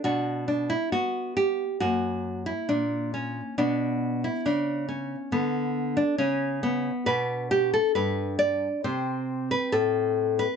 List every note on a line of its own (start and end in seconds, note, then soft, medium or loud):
0.04 0.76 B2 medium
0.04 0.47 D4 soft
0.04 0.47 F#4 medium
0.48 0.71 D4 medium
0.70 0.92 E4 medium
0.92 1.63 B3 soft
0.92 1.35 F#4 medium
1.37 1.80 G4 medium
1.80 2.51 F#2 soft
1.80 3.54 A#3 soft
1.80 2.44 F#4 medium
2.46 2.69 E4 medium
2.69 3.40 A#2 soft
2.69 3.11 D4 medium
3.14 3.56 C#4 medium
3.58 4.28 B2 medium
3.58 5.31 B3 soft
3.58 4.21 D4 medium
4.24 4.46 E4 medium
4.46 5.15 C#3 soft
4.46 4.87 D4 medium
4.89 5.30 C#4 medium
5.32 6.02 D3 medium
5.32 5.95 B3 medium
5.97 6.18 D4 medium
6.18 6.90 C#3 medium
6.18 6.61 C#4 medium
6.63 7.05 B3 medium
7.06 7.78 B2 medium
7.06 8.80 D4 soft
7.06 7.49 B4 medium
7.51 7.73 G4 medium
7.74 7.95 A4 medium
7.95 8.67 G2 medium
7.95 8.38 B4 medium
8.39 8.82 D5 medium
8.84 9.55 C3 medium
8.84 10.56 C4 soft
8.84 9.48 C5 medium
9.51 9.73 B4 medium
9.72 10.45 A2 medium
9.72 10.37 A4 medium
10.39 10.56 B4 medium